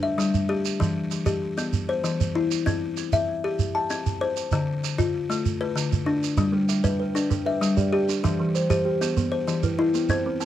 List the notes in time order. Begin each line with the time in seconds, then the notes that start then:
0.03 E5
0.18 G3, shekere
0.34 shekere
0.49 G4
0.65 shekere
0.80 E3, shekere
1.11 shekere
1.26 G4, shekere
1.58 B3, shekere
1.73 shekere
1.89 C5
2.04 E3, shekere
2.21 shekere
2.35 E4
2.51 shekere
2.66 C4, shekere
2.97 shekere
3.13 E5, shekere
3.44 G4
3.59 shekere
3.75 A5
3.90 C4, shekere
4.06 shekere
4.21 C5
4.37 shekere
4.51 D3, shekere
4.84 shekere
4.98 F4, shekere
5.30 A3, shekere
5.46 shekere
5.61 B4
5.76 D3, shekere
5.93 shekere
6.06 D4
6.23 shekere
6.37 G3, shekere
6.52 G3
6.69 E5, shekere
6.84 B4 E5, shekere
7.00 B4
7.15 D4, shekere
7.30 D4, shekere
7.46 B4 E5
7.61 G3, shekere
7.77 G4 D5, shekere
7.93 G4
8.09 D4, shekere
8.24 E3 E5, shekere
8.40 E3
8.55 C5, shekere
8.70 G4 C5, shekere
8.85 G4
9.01 B3, shekere
9.17 B3, shekere
9.32 C5
9.48 E3, shekere
9.63 E4 B4, shekere
9.79 E4
9.94 B3, shekere
10.09 C4 C5, shekere
10.26 C4
10.40 A5, shekere